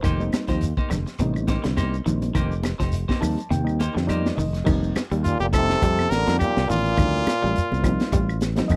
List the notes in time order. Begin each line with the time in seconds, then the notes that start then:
0.03 F1 D#3 A#3 D#4 G4 C5, kick, closed hi-hat, claves, shekere
0.20 G3 A#3 C4 D#4, shekere
0.32 muted clean electric guitar stroke, snare, closed hi-hat, high conga, claves, shekere
0.47 D#2 F3 D#4 G4 C5, kick, snare, closed hi-hat, shekere
0.61 closed hi-hat, shekere
0.77 A#3 D#4 G4 C5, kick, high conga, shekere
0.90 F1 D3, muted clean electric guitar stroke, snare, closed hi-hat, low conga, claves, shekere
1.06 muted clean electric guitar stroke, snare, shekere
1.19 A1 C3 G3 A#3 C4 D#4, muted clean electric guitar stroke, closed hi-hat, high conga, shekere
1.34 muted clean electric guitar stroke, claves, shekere
1.47 A#3 D#4 G4 C5, kick, snare, closed hi-hat, high conga, shekere
1.64 C2 D3, muted clean electric guitar stroke, snare, closed hi-hat, shekere
1.76 A#3 D#4 G4 C5, snare, closed hi-hat, high conga, claves, shekere
1.94 shekere
2.06 A#1 D#3 G3 A#3 C4 D#4, muted clean electric guitar stroke, closed hi-hat, low conga, shekere
2.22 muted clean electric guitar stroke, closed hi-hat, high conga, shekere
2.35 F1 D#3 A#3 D#4 G4 C5, kick, closed hi-hat, claves, shekere
2.52 shekere
2.63 muted clean electric guitar stroke, snare, closed hi-hat, high conga, claves, shekere
2.79 F1 F3 D#4 G4 C5, kick, snare, closed hi-hat, shekere
2.92 closed hi-hat, shekere
3.08 A#3 D#4 G4 C5, kick, snare, high conga, shekere
3.20 D#2 G3 A#3 C4 D#4 A5, muted clean electric guitar stroke, open hi-hat, low conga, claves, shekere
3.38 muted clean electric guitar stroke, closed hi-hat, shekere
3.50 D#2 C3 G5, muted clean electric guitar stroke, closed hi-hat, high conga, shekere
3.64 G3 A#3 C4 D#4, muted clean electric guitar stroke, claves
3.68 shekere
3.79 A#3 D#4 G4 C5, closed hi-hat, high conga, shekere
3.95 F2 D3, muted clean electric guitar stroke, snare, shekere
4.07 G3 A#3 C4 D#4 G4 C5 D5, closed hi-hat, high conga, low conga, claves, shekere
4.26 snare, shekere
4.36 F1 D#3 D#5, muted clean electric guitar stroke, open hi-hat, low conga, shekere
4.53 muted clean electric guitar stroke, snare, closed hi-hat, shekere
4.65 F1 D#3 G3 A#3 C4 D#4, kick, crash, low conga, claves, shekere
4.84 shekere
4.95 snare, closed hi-hat, high conga, claves, shekere
5.11 D#2 G3, closed hi-hat, shekere
5.23 A#2 F4, closed hi-hat, shekere
5.40 F1 A#2 G4, high conga, shekere
5.52 C3 F3 G3 A#3 C4 D#4 A4, kick, closed hi-hat, high conga, claves, shekere
5.70 snare, shekere
5.82 F2 G3, kick, closed hi-hat, high conga, shekere
5.99 snare, high conga, claves, shekere
6.10 A1 A#4, snare, closed hi-hat, shekere
6.14 D3
6.26 F2 G3 A#3 C4 D#4, muted clean electric guitar stroke, snare, closed hi-hat, shekere
6.39 A#2 G4, closed hi-hat, high conga, low conga, claves, shekere
6.57 C2, snare, shekere
6.67 A1 A#2 D#3 F4, open hi-hat, high conga, shekere
6.85 shekere
6.97 D2 D#3 G3 A#3 C4 D#4, kick, closed hi-hat, low conga, claves, shekere
7.15 shekere
7.27 snare, closed hi-hat, high conga, claves, shekere
7.42 A1 G3, shekere
7.56 muted fingered electric bass stroke, closed hi-hat, shekere
7.72 C2, high conga, shekere
7.83 F3 G3 A#3 C4 D#4, kick, closed hi-hat, high conga, claves, shekere
8.00 snare, closed hi-hat, shekere
8.12 A1 G3, kick, closed hi-hat, high conga, shekere
8.29 claves, shekere
8.41 snare, closed hi-hat, shekere
8.55 F3 G3 A#3 C4 D#4, snare, closed hi-hat, shekere
8.68 F1 D#5, closed hi-hat, high conga, low conga, claves, shekere